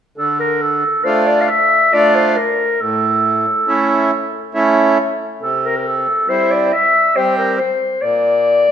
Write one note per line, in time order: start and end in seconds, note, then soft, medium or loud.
0.18 0.84 D3 medium
0.18 0.39 A4 medium
0.40 0.63 A#4 medium
0.61 1.06 A4 medium
1.04 1.49 A3 soft
1.04 1.49 D4 medium
1.04 1.49 F4 medium
1.04 1.29 C5 medium
1.27 1.43 D5 medium
1.42 1.50 F5 medium
1.49 1.95 E5 loud
1.92 2.36 A3 medium
1.92 2.37 D4 medium
1.92 2.37 F4 medium
1.92 2.17 D5 medium
2.15 2.38 C5 medium
2.36 2.82 A#4 medium
2.80 3.46 A2 medium
2.80 4.55 A4 medium
3.67 4.11 A3 medium
3.67 4.11 C#4 medium
3.67 4.11 E4 medium
4.54 4.98 A3 medium
4.54 4.98 C#4 medium
4.54 4.98 E4 medium
5.42 6.07 C3 medium
5.42 5.67 A4 medium
5.66 5.77 A#4 medium
5.78 5.88 A#4 medium
5.86 6.31 A4 medium
6.28 6.72 G3 medium
6.28 6.72 C4 medium
6.28 6.72 E4 medium
6.28 6.53 C5 medium
6.51 6.75 D5 medium
6.73 7.18 E5 loud
7.16 7.59 G3 medium
7.16 7.59 C4 soft
7.16 7.59 G4 medium
7.16 7.37 C5 medium
7.38 7.58 A#4 medium
7.59 8.04 C5 medium
8.02 8.68 A#2 medium
8.02 8.72 D5 medium